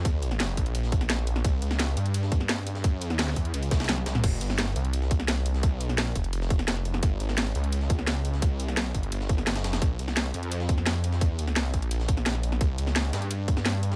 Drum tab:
CC |--------------------------------|--------------------------------|--------------------------------|x-------------------------------|
HH |x---x-x-x---x-x-x---x-x-x---x---|x---x---x-x-x-x-x---x---x---x---|x---x-x-x---x-x-x-x-x-xxx---x-x-|x---x---x-x-x-x-x---x---x---x---|
SD |------o-o---------o---o-o-o---o-|------o-o---------o---o-o-----o-|------o-o-o---------o-ooo-o-o-o-|------o-o---------o---o-o-----o-|
T1 |--------------------------------|--------------------------------|------------------------o-o-----|--------------------------------|
T2 |--------------------------------|--------------------------------|------------------------------o-|--------------------------------|
BD |o-----------o-------o-----------|o-------------------o-----------|o-----------o-------o-----------|o-------------------o-----------|

CC |--------------------------------|--------------------------------|--------------------------------|--------------------------------|
HH |x---x-x-x---x-x-x---x-x-x---x---|x---x---x-x-x-x-x---x---x---x---|x---x-x-x---x-x-x---x-x-x-x-x-x-|x---x---x-x-x-x-x---x---x---x---|
SD |------o-o---------o---o-o-o---o-|------o-o---------o---o-o-----o-|------o-o---------o---o-o-o-o-o-|------o-o---------o---o-o-----o-|
T1 |--------------------------------|--------------------------------|--------------------------------|--------------------------------|
T2 |--------------------------------|--------------------------------|--------------------------------|--------------------------------|
BD |o-----------o-------o-----------|o-------------------o-----------|o-----------o-------o-----------|o-------------------o-----------|

CC |--------------------------------|--------------------------------|
HH |x---x-x-x---x-x-x---x-x-x---x---|x---x---x-x-x-x-x---x---x---x---|
SD |------o-o---------o---o-o-o---o-|------o-o---o---------o-o-----o-|
T1 |--------------------------------|--------------------------------|
T2 |--------------------------------|--------------------------------|
BD |o-----------o-------o-----------|o-------------------o-----------|